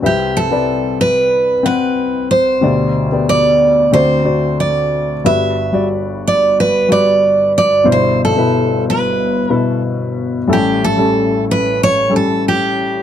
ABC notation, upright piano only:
X:1
M:4/4
L:1/16
Q:1/4=92
K:G
V:1 name="Upright piano"
[CBe]3 [CBd]6 z [CBf]4- [CBf] z | [B,,Gd]3 [B,Gd]4- [B,Gd] [CFd]2 [CFd]4- [CFd] z | [G,FB]3 [G,Fd]6 z [G,FB]4- [G,FB] z | [B,,Ec]3 [B,,EB]6 z [B,,EB]4- [B,,EB] z |
[G,^CA]3 [G,CA]6 z [G,CA]4- [G,CA] z |]
V:2 name="Upright piano" clef=bass
[C,,C,]16 | [D,,D,]8 [D,,D,]8 | [G,,,G,,]16 | [G,,,G,,]16 |
[A,,,A,,]16 |]